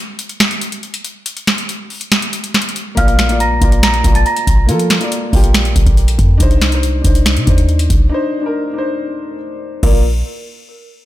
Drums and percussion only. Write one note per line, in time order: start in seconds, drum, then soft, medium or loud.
0.19 closed hi-hat medium
0.29 closed hi-hat medium
0.40 finger snap medium
0.40 snare loud
0.40 closed hi-hat medium
0.51 closed hi-hat medium
0.61 closed hi-hat medium
0.72 closed hi-hat medium
0.83 closed hi-hat soft
0.94 closed hi-hat medium
1.05 closed hi-hat medium
1.26 closed hi-hat medium
1.37 closed hi-hat medium
1.47 finger snap medium
1.47 snare loud
1.47 closed hi-hat soft
1.58 closed hi-hat medium
1.69 closed hi-hat medium
1.90 open hi-hat medium
2.01 closed hi-hat medium
2.12 finger snap medium
2.12 snare loud
2.12 closed hi-hat medium
2.22 closed hi-hat medium
2.33 closed hi-hat medium
2.44 closed hi-hat medium
2.54 finger snap medium
2.54 snare loud
2.54 closed hi-hat soft
2.62 closed hi-hat medium
2.69 closed hi-hat medium
2.76 closed hi-hat medium
2.97 kick loud
2.97 closed hi-hat medium
3.08 closed hi-hat medium
3.19 finger snap medium
3.19 snare loud
3.19 closed hi-hat medium
3.29 closed hi-hat medium
3.40 closed hi-hat medium
3.62 kick loud
3.62 closed hi-hat medium
3.72 closed hi-hat medium
3.83 finger snap medium
3.83 snare loud
3.83 closed hi-hat medium
3.94 closed hi-hat medium
4.04 kick loud
4.04 closed hi-hat medium
4.15 closed hi-hat medium
4.26 closed hi-hat soft
4.37 closed hi-hat medium
4.47 kick loud
4.47 closed hi-hat medium
4.69 closed hi-hat medium
4.79 closed hi-hat medium
4.90 finger snap medium
4.90 snare loud
4.90 closed hi-hat medium
5.01 closed hi-hat medium
5.12 closed hi-hat medium
5.33 kick loud
5.33 open hi-hat medium
5.44 closed hi-hat medium
5.54 finger snap medium
5.54 snare loud
5.54 closed hi-hat medium
5.65 closed hi-hat medium
5.76 kick loud
5.76 closed hi-hat medium
5.87 kick loud
5.87 closed hi-hat medium
5.97 closed hi-hat soft
6.08 closed hi-hat medium
6.19 kick loud
6.19 closed hi-hat medium
6.40 kick loud
6.40 closed hi-hat medium
6.51 closed hi-hat medium
6.61 finger snap medium
6.61 snare loud
6.61 closed hi-hat medium
6.72 closed hi-hat medium
6.83 closed hi-hat medium
7.04 kick medium
7.04 closed hi-hat medium
7.15 closed hi-hat medium
7.26 finger snap medium
7.26 snare loud
7.26 closed hi-hat medium
7.37 closed hi-hat medium
7.47 kick loud
7.47 closed hi-hat medium
7.58 closed hi-hat medium
7.69 closed hi-hat soft
7.79 closed hi-hat medium
7.90 kick loud
7.90 closed hi-hat medium
9.83 kick loud
9.83 crash medium